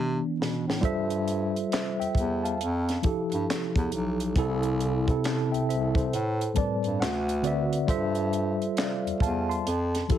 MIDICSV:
0, 0, Header, 1, 4, 480
1, 0, Start_track
1, 0, Tempo, 882353
1, 452, Time_signature, 4, 2, 24, 8
1, 5538, End_track
2, 0, Start_track
2, 0, Title_t, "Tine electric piano"
2, 0, Program_c, 0, 4
2, 0, Note_on_c, 0, 52, 53
2, 0, Note_on_c, 0, 59, 43
2, 0, Note_on_c, 0, 62, 55
2, 77, Control_c, 0, 64, 127
2, 431, Note_off_c, 0, 52, 0
2, 432, Note_off_c, 0, 59, 0
2, 435, Note_off_c, 0, 62, 0
2, 440, Note_on_c, 0, 55, 101
2, 445, Note_on_c, 0, 65, 84
2, 453, Note_on_c, 0, 69, 81
2, 456, Note_on_c, 0, 72, 95
2, 458, Control_c, 0, 64, 0
2, 463, Note_on_c, 0, 76, 115
2, 553, Control_c, 0, 64, 127
2, 933, Note_off_c, 0, 76, 0
2, 934, Note_off_c, 0, 72, 0
2, 939, Note_on_c, 0, 76, 68
2, 943, Note_on_c, 0, 72, 53
2, 1051, Note_off_c, 0, 55, 0
2, 1054, Note_off_c, 0, 65, 0
2, 1057, Note_off_c, 0, 69, 0
2, 1079, Note_off_c, 0, 76, 0
2, 1081, Note_off_c, 0, 72, 0
2, 1086, Note_on_c, 0, 79, 64
2, 1089, Note_on_c, 0, 76, 59
2, 1312, Note_off_c, 0, 79, 0
2, 1314, Note_off_c, 0, 76, 0
2, 1324, Note_on_c, 0, 81, 65
2, 1331, Note_on_c, 0, 77, 60
2, 1419, Control_c, 0, 64, 0
2, 1530, Control_c, 0, 64, 127
2, 1551, Note_off_c, 0, 81, 0
2, 1555, Note_off_c, 0, 77, 0
2, 1644, Note_on_c, 0, 53, 71
2, 1650, Note_on_c, 0, 64, 69
2, 1658, Note_on_c, 0, 67, 68
2, 1665, Note_on_c, 0, 69, 87
2, 2253, Note_off_c, 0, 53, 0
2, 2256, Note_off_c, 0, 64, 0
2, 2260, Note_off_c, 0, 67, 0
2, 2264, Note_off_c, 0, 69, 0
2, 2369, Note_on_c, 0, 48, 107
2, 2375, Note_on_c, 0, 60, 99
2, 2379, Control_c, 0, 64, 0
2, 2383, Note_on_c, 0, 64, 98
2, 2389, Note_on_c, 0, 69, 115
2, 2488, Control_c, 0, 64, 127
2, 2673, Note_off_c, 0, 48, 0
2, 2676, Note_off_c, 0, 60, 0
2, 2680, Note_off_c, 0, 64, 0
2, 2683, Note_off_c, 0, 69, 0
2, 2754, Note_on_c, 0, 48, 80
2, 2761, Note_on_c, 0, 60, 73
2, 2767, Note_on_c, 0, 64, 74
2, 2778, Note_on_c, 0, 69, 84
2, 2856, Note_on_c, 0, 81, 63
2, 2860, Note_off_c, 0, 69, 0
2, 2997, Note_off_c, 0, 81, 0
2, 3001, Note_on_c, 0, 79, 63
2, 3003, Note_on_c, 0, 76, 61
2, 3035, Note_off_c, 0, 48, 0
2, 3039, Note_off_c, 0, 60, 0
2, 3042, Note_off_c, 0, 64, 0
2, 3087, Note_off_c, 0, 79, 0
2, 3088, Note_off_c, 0, 76, 0
2, 3095, Note_on_c, 0, 76, 70
2, 3099, Note_on_c, 0, 72, 55
2, 3236, Note_off_c, 0, 72, 0
2, 3237, Note_off_c, 0, 76, 0
2, 3243, Note_on_c, 0, 72, 65
2, 3244, Note_on_c, 0, 69, 59
2, 3339, Control_c, 0, 64, 0
2, 3449, Control_c, 0, 64, 127
2, 3471, Note_off_c, 0, 69, 0
2, 3471, Note_off_c, 0, 72, 0
2, 3556, Note_on_c, 0, 45, 80
2, 3561, Note_on_c, 0, 55, 74
2, 3566, Note_on_c, 0, 60, 64
2, 3569, Note_on_c, 0, 81, 61
2, 3572, Note_on_c, 0, 71, 67
2, 3578, Note_on_c, 0, 74, 82
2, 3793, Note_off_c, 0, 81, 0
2, 3804, Note_off_c, 0, 45, 0
2, 3807, Note_off_c, 0, 55, 0
2, 3809, Note_off_c, 0, 60, 0
2, 3809, Note_on_c, 0, 78, 67
2, 3812, Note_off_c, 0, 71, 0
2, 3815, Note_off_c, 0, 74, 0
2, 3819, Control_c, 0, 64, 0
2, 3910, Control_c, 0, 64, 127
2, 4034, Note_off_c, 0, 78, 0
2, 4038, Note_on_c, 0, 50, 85
2, 4044, Note_on_c, 0, 60, 76
2, 4049, Note_on_c, 0, 66, 74
2, 4051, Note_on_c, 0, 74, 73
2, 4056, Note_on_c, 0, 71, 70
2, 4063, Note_on_c, 0, 76, 85
2, 4250, Note_off_c, 0, 50, 0
2, 4253, Note_off_c, 0, 60, 0
2, 4256, Note_off_c, 0, 66, 0
2, 4259, Note_off_c, 0, 71, 0
2, 4263, Note_off_c, 0, 76, 0
2, 4275, Note_off_c, 0, 74, 0
2, 4280, Note_on_c, 0, 55, 102
2, 4287, Note_on_c, 0, 65, 98
2, 4288, Note_on_c, 0, 69, 92
2, 4293, Note_on_c, 0, 72, 104
2, 4300, Control_c, 0, 64, 0
2, 4300, Note_on_c, 0, 76, 104
2, 4383, Control_c, 0, 64, 127
2, 4776, Note_off_c, 0, 76, 0
2, 4778, Note_on_c, 0, 77, 68
2, 4780, Note_on_c, 0, 74, 56
2, 4891, Note_off_c, 0, 55, 0
2, 4894, Note_off_c, 0, 65, 0
2, 4895, Note_off_c, 0, 69, 0
2, 4897, Note_off_c, 0, 72, 0
2, 5003, Note_off_c, 0, 77, 0
2, 5004, Note_off_c, 0, 74, 0
2, 5016, Note_on_c, 0, 81, 72
2, 5018, Note_on_c, 0, 77, 57
2, 5157, Note_off_c, 0, 81, 0
2, 5158, Note_off_c, 0, 77, 0
2, 5164, Note_on_c, 0, 84, 70
2, 5165, Note_on_c, 0, 81, 53
2, 5259, Control_c, 0, 64, 0
2, 5350, Control_c, 0, 64, 127
2, 5392, Note_off_c, 0, 81, 0
2, 5392, Note_off_c, 0, 84, 0
2, 5484, Note_on_c, 0, 53, 67
2, 5491, Note_on_c, 0, 64, 68
2, 5499, Note_on_c, 0, 67, 65
2, 5505, Note_on_c, 0, 69, 91
2, 5538, Note_off_c, 0, 53, 0
2, 5538, Note_off_c, 0, 64, 0
2, 5538, Note_off_c, 0, 67, 0
2, 5538, Note_off_c, 0, 69, 0
2, 5538, End_track
3, 0, Start_track
3, 0, Title_t, "Bass clarinet"
3, 0, Program_c, 1, 71
3, 0, Note_on_c, 1, 48, 107
3, 107, Note_off_c, 1, 48, 0
3, 217, Note_on_c, 1, 47, 73
3, 346, Note_off_c, 1, 47, 0
3, 366, Note_on_c, 1, 45, 73
3, 443, Note_off_c, 1, 45, 0
3, 456, Note_on_c, 1, 43, 78
3, 873, Note_off_c, 1, 43, 0
3, 1091, Note_on_c, 1, 40, 42
3, 1125, Note_off_c, 1, 40, 0
3, 1172, Note_on_c, 1, 40, 87
3, 1382, Note_off_c, 1, 40, 0
3, 1416, Note_on_c, 1, 41, 92
3, 1624, Note_off_c, 1, 41, 0
3, 1659, Note_on_c, 1, 43, 44
3, 1718, Note_off_c, 1, 43, 0
3, 1806, Note_on_c, 1, 43, 85
3, 1883, Note_off_c, 1, 43, 0
3, 2044, Note_on_c, 1, 40, 88
3, 2121, Note_off_c, 1, 40, 0
3, 2138, Note_on_c, 1, 35, 83
3, 2345, Note_off_c, 1, 35, 0
3, 2372, Note_on_c, 1, 36, 96
3, 2791, Note_off_c, 1, 36, 0
3, 3007, Note_on_c, 1, 36, 46
3, 3042, Note_off_c, 1, 36, 0
3, 3097, Note_on_c, 1, 36, 78
3, 3305, Note_off_c, 1, 36, 0
3, 3337, Note_on_c, 1, 45, 94
3, 3544, Note_off_c, 1, 45, 0
3, 3573, Note_on_c, 1, 43, 49
3, 3633, Note_off_c, 1, 43, 0
3, 3727, Note_on_c, 1, 43, 77
3, 3803, Note_off_c, 1, 43, 0
3, 3817, Note_on_c, 1, 38, 108
3, 4234, Note_off_c, 1, 38, 0
3, 4291, Note_on_c, 1, 43, 92
3, 4710, Note_off_c, 1, 43, 0
3, 4929, Note_on_c, 1, 40, 49
3, 4963, Note_off_c, 1, 40, 0
3, 5008, Note_on_c, 1, 40, 79
3, 5220, Note_off_c, 1, 40, 0
3, 5253, Note_on_c, 1, 41, 97
3, 5462, Note_off_c, 1, 41, 0
3, 5497, Note_on_c, 1, 43, 45
3, 5538, Note_off_c, 1, 43, 0
3, 5538, End_track
4, 0, Start_track
4, 0, Title_t, "Drums"
4, 228, Note_on_c, 9, 38, 84
4, 282, Note_off_c, 9, 38, 0
4, 379, Note_on_c, 9, 38, 84
4, 433, Note_off_c, 9, 38, 0
4, 452, Note_on_c, 9, 36, 97
4, 457, Note_on_c, 9, 42, 74
4, 506, Note_off_c, 9, 36, 0
4, 511, Note_off_c, 9, 42, 0
4, 600, Note_on_c, 9, 42, 49
4, 655, Note_off_c, 9, 42, 0
4, 694, Note_on_c, 9, 42, 54
4, 749, Note_off_c, 9, 42, 0
4, 851, Note_on_c, 9, 42, 42
4, 905, Note_off_c, 9, 42, 0
4, 937, Note_on_c, 9, 42, 68
4, 945, Note_on_c, 9, 38, 107
4, 948, Note_on_c, 9, 39, 92
4, 991, Note_off_c, 9, 42, 0
4, 999, Note_off_c, 9, 38, 0
4, 1002, Note_off_c, 9, 39, 0
4, 1096, Note_on_c, 9, 42, 42
4, 1151, Note_off_c, 9, 42, 0
4, 1168, Note_on_c, 9, 36, 67
4, 1183, Note_on_c, 9, 42, 55
4, 1223, Note_off_c, 9, 36, 0
4, 1237, Note_off_c, 9, 42, 0
4, 1335, Note_on_c, 9, 42, 47
4, 1390, Note_off_c, 9, 42, 0
4, 1419, Note_on_c, 9, 42, 68
4, 1473, Note_off_c, 9, 42, 0
4, 1570, Note_on_c, 9, 42, 52
4, 1576, Note_on_c, 9, 38, 33
4, 1625, Note_off_c, 9, 42, 0
4, 1630, Note_off_c, 9, 38, 0
4, 1650, Note_on_c, 9, 42, 66
4, 1655, Note_on_c, 9, 36, 84
4, 1704, Note_off_c, 9, 42, 0
4, 1709, Note_off_c, 9, 36, 0
4, 1805, Note_on_c, 9, 42, 43
4, 1860, Note_off_c, 9, 42, 0
4, 1906, Note_on_c, 9, 38, 112
4, 1908, Note_on_c, 9, 42, 87
4, 1909, Note_on_c, 9, 39, 88
4, 1961, Note_off_c, 9, 38, 0
4, 1962, Note_off_c, 9, 42, 0
4, 1964, Note_off_c, 9, 39, 0
4, 2044, Note_on_c, 9, 36, 86
4, 2050, Note_on_c, 9, 42, 47
4, 2098, Note_off_c, 9, 36, 0
4, 2104, Note_off_c, 9, 42, 0
4, 2132, Note_on_c, 9, 42, 65
4, 2186, Note_off_c, 9, 42, 0
4, 2286, Note_on_c, 9, 42, 49
4, 2340, Note_off_c, 9, 42, 0
4, 2370, Note_on_c, 9, 36, 96
4, 2373, Note_on_c, 9, 42, 83
4, 2424, Note_off_c, 9, 36, 0
4, 2427, Note_off_c, 9, 42, 0
4, 2518, Note_on_c, 9, 42, 46
4, 2573, Note_off_c, 9, 42, 0
4, 2614, Note_on_c, 9, 42, 57
4, 2668, Note_off_c, 9, 42, 0
4, 2762, Note_on_c, 9, 36, 86
4, 2768, Note_on_c, 9, 42, 36
4, 2817, Note_off_c, 9, 36, 0
4, 2823, Note_off_c, 9, 42, 0
4, 2852, Note_on_c, 9, 42, 70
4, 2860, Note_on_c, 9, 38, 116
4, 2863, Note_on_c, 9, 39, 90
4, 2906, Note_off_c, 9, 42, 0
4, 2914, Note_off_c, 9, 38, 0
4, 2917, Note_off_c, 9, 39, 0
4, 3015, Note_on_c, 9, 42, 41
4, 3070, Note_off_c, 9, 42, 0
4, 3102, Note_on_c, 9, 42, 53
4, 3157, Note_off_c, 9, 42, 0
4, 3237, Note_on_c, 9, 36, 85
4, 3252, Note_on_c, 9, 42, 49
4, 3291, Note_off_c, 9, 36, 0
4, 3306, Note_off_c, 9, 42, 0
4, 3337, Note_on_c, 9, 42, 69
4, 3391, Note_off_c, 9, 42, 0
4, 3489, Note_on_c, 9, 42, 53
4, 3543, Note_off_c, 9, 42, 0
4, 3567, Note_on_c, 9, 42, 68
4, 3573, Note_on_c, 9, 36, 83
4, 3621, Note_off_c, 9, 42, 0
4, 3628, Note_off_c, 9, 36, 0
4, 3721, Note_on_c, 9, 42, 38
4, 3775, Note_off_c, 9, 42, 0
4, 3821, Note_on_c, 9, 38, 111
4, 3822, Note_on_c, 9, 42, 76
4, 3824, Note_on_c, 9, 39, 85
4, 3875, Note_off_c, 9, 38, 0
4, 3877, Note_off_c, 9, 42, 0
4, 3878, Note_off_c, 9, 39, 0
4, 3965, Note_on_c, 9, 42, 50
4, 4020, Note_off_c, 9, 42, 0
4, 4047, Note_on_c, 9, 42, 68
4, 4101, Note_off_c, 9, 42, 0
4, 4203, Note_on_c, 9, 42, 53
4, 4258, Note_off_c, 9, 42, 0
4, 4288, Note_on_c, 9, 36, 94
4, 4291, Note_on_c, 9, 42, 87
4, 4342, Note_off_c, 9, 36, 0
4, 4345, Note_off_c, 9, 42, 0
4, 4433, Note_on_c, 9, 42, 48
4, 4488, Note_off_c, 9, 42, 0
4, 4531, Note_on_c, 9, 42, 54
4, 4586, Note_off_c, 9, 42, 0
4, 4687, Note_on_c, 9, 42, 36
4, 4742, Note_off_c, 9, 42, 0
4, 4771, Note_on_c, 9, 42, 73
4, 4779, Note_on_c, 9, 38, 105
4, 4782, Note_on_c, 9, 39, 86
4, 4825, Note_off_c, 9, 42, 0
4, 4833, Note_off_c, 9, 38, 0
4, 4836, Note_off_c, 9, 39, 0
4, 4935, Note_on_c, 9, 42, 45
4, 4989, Note_off_c, 9, 42, 0
4, 5006, Note_on_c, 9, 36, 77
4, 5021, Note_on_c, 9, 42, 48
4, 5061, Note_off_c, 9, 36, 0
4, 5076, Note_off_c, 9, 42, 0
4, 5174, Note_on_c, 9, 42, 43
4, 5229, Note_off_c, 9, 42, 0
4, 5259, Note_on_c, 9, 42, 67
4, 5313, Note_off_c, 9, 42, 0
4, 5411, Note_on_c, 9, 42, 57
4, 5417, Note_on_c, 9, 38, 32
4, 5466, Note_off_c, 9, 42, 0
4, 5471, Note_off_c, 9, 38, 0
4, 5492, Note_on_c, 9, 42, 76
4, 5494, Note_on_c, 9, 36, 84
4, 5538, Note_off_c, 9, 36, 0
4, 5538, Note_off_c, 9, 42, 0
4, 5538, End_track
0, 0, End_of_file